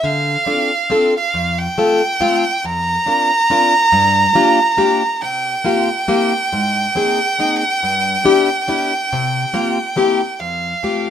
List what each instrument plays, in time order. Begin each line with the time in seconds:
0.04 steel-string acoustic guitar D3, violin F5
0.46 steel-string acoustic guitar C4 D4 F4 A4
0.90 steel-string acoustic guitar C4 D4 F4 A4
1.17 violin F5
1.34 steel-string acoustic guitar F2
1.58 violin G5
1.78 steel-string acoustic guitar A3 C4 F4 A4
2.20 steel-string acoustic guitar A3 C4 F4 A4
2.64 steel-string acoustic guitar F2, violin A#5
3.06 steel-string acoustic guitar C4 D4 F4 A#4
3.50 steel-string acoustic guitar C4 D4 F4 A#4
3.92 steel-string acoustic guitar G2
4.35 steel-string acoustic guitar A#3 D4 F4 G4
4.77 steel-string acoustic guitar A#3 D4 F4 G4
5.21 steel-string acoustic guitar C3, violin G5
5.65 steel-string acoustic guitar A#3 C4 F4 G4
6.08 steel-string acoustic guitar A#3 C4 E4 G4
6.53 steel-string acoustic guitar G#2
6.95 steel-string acoustic guitar A#3 C4 D#4 G#4
7.39 steel-string acoustic guitar A#3 C4 D#4 G#4
7.83 steel-string acoustic guitar G2
8.25 steel-string acoustic guitar B3 D4 E4 G4
8.68 steel-string acoustic guitar B3 D4 E4 G4
9.13 steel-string acoustic guitar C3
9.54 steel-string acoustic guitar A#3 C4 F4 G4
9.96 steel-string acoustic guitar A#3 C4 E4 G4
10.39 steel-string acoustic guitar F2, violin F5
10.83 steel-string acoustic guitar A3 C4 F4 G4